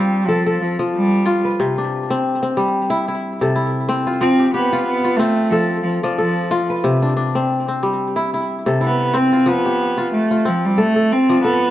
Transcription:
Already playing: kora F3 C4 D4 F4 G4, cello G3
0.26 cello F3, kora A4
0.46 kora A4
0.61 cello F3
0.79 kora F3
0.95 cello G3
1.26 kora F4
1.45 kora B4
1.60 kora C3
1.78 kora D4
2.10 kora C4
2.43 kora C4
2.57 kora G3
2.90 kora E4
3.08 kora E4
3.41 kora C3 A4
3.55 kora E4
3.89 kora C4
4.07 kora F4
4.21 kora F3, cello C4
4.39 kora G4
4.54 cello B3, kora G4
4.73 kora F4
4.84 cello B3
5.04 kora F4
5.17 cello A3, kora C4
5.50 cello F3, kora A4
5.83 cello F3
6.03 kora F3 D5
6.17 cello F3, kora A4
6.51 kora F4
6.70 kora B4
6.84 kora C3
7.02 kora D4
7.17 kora D4
7.35 kora C4
7.68 kora C4
7.83 kora G3
8.16 kora E4
8.34 kora E4
8.66 kora C3 A4
8.81 cello B3, kora E4
9.14 kora C4, cello C4
9.33 kora F4
9.46 kora F3, cello B3
9.65 kora G4
9.97 kora F4
10.13 cello A3
10.31 kora F4
10.45 cello F3, kora C4
10.65 cello G3
10.78 cello A3, kora A4
10.96 kora A4
11.12 cello C4
11.29 kora F3 D5
11.43 cello B3, kora A4

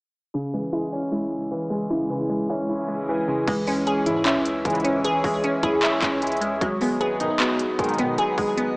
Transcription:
0.34 grand piano C#3, ambient pad C#3 G#3 E4 G#4, synth pluck C#3
0.53 grand piano E3, synth pluck G#3
0.73 grand piano G#3, synth pluck E4
0.93 grand piano C#4
1.12 synth pluck G#3, grand piano E4
1.52 grand piano E3
1.70 synth pluck G#3, grand piano G#3
1.90 grand piano C#3, synth pluck E4
2.10 synth pluck C#3, grand piano E3
2.30 synth pluck G#3, grand piano G#3
2.50 grand piano C#4, synth pluck E4
2.69 grand piano E4
2.89 synth pluck G#3
3.09 grand piano E3
3.28 synth pluck C#3, grand piano G#3
3.48 808-style bass C#2, grand piano E3, synth pluck G#3, ambient pad G#4 C#5 E5 C#6, kick, closed hi-hat, crash
3.67 grand piano G#3, synth pluck C#4, open hi-hat
3.86 grand piano C#4, synth pluck G#4, closed hi-hat
4.06 analog polysynth C#2 G#2 E3, 808-style bass G#2, grand piano E4, closed hi-hat
4.25 synth pluck C#4, grand piano E5, clap, closed hi-hat
4.36 808-style bass C#2
4.46 closed hi-hat
4.65 analog polysynth C#2 G#2 E3, 808-style bass C#2, grand piano G#3, kick, closed hi-hat
4.70 closed hi-hat
4.75 closed hi-hat
4.80 closed hi-hat
4.84 synth pluck C#4, grand piano C#4, closed hi-hat
5.04 grand piano E3, synth pluck G#4, closed hi-hat
5.24 808-style bass C#2, grand piano G#3, synth pluck G#3, kick, open hi-hat
5.44 grand piano C#4, synth pluck C#4, closed hi-hat
5.63 808-style bass C#2, grand piano E4, synth pluck G#4, kick, closed hi-hat
5.83 grand piano E5, clap, closed hi-hat
6.02 808-style bass C#2, synth pluck C#4, kick, clap, closed hi-hat
6.22 grand piano G#3, closed hi-hat
6.27 closed hi-hat
6.32 closed hi-hat
6.37 closed hi-hat
6.41 synth pluck G#3, grand piano C#4, closed hi-hat
6.61 808-style bass G#1, grand piano F#3, synth pluck G#3, ambient pad D#5 F#5 B5, kick, closed hi-hat
6.81 grand piano G#3, synth pluck B3, open hi-hat
7.00 grand piano B3, synth pluck G#4, closed hi-hat
7.20 analog polysynth B1 G#2 D#3, grand piano D#4, closed hi-hat
7.40 synth pluck B3, grand piano F#4, clap, closed hi-hat
7.59 closed hi-hat
7.79 808-style bass G#1, analog polysynth B1 G#2 D#3, grand piano G#3, kick, closed hi-hat
7.84 closed hi-hat
7.89 closed hi-hat
7.94 closed hi-hat
7.99 808-style bass B2, grand piano B3, synth pluck B3, closed hi-hat
8.18 grand piano F#3, synth pluck G#4, closed hi-hat
8.38 808-style bass G#1, synth pluck G#3, grand piano G#3, kick, open hi-hat
8.57 synth pluck B3, grand piano B3, closed hi-hat

